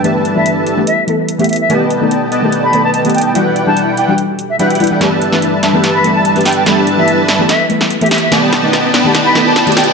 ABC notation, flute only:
X:1
M:4/4
L:1/16
Q:1/4=145
K:G
V:1 name="Flute"
z3 e z4 e z4 e e e | z8 z b2 a a z g g | z3 a z2 g g z3 e e z3 | z8 z b2 a a z g g |
z3 e z4 e z4 e e e | z8 z b2 a a z g g |]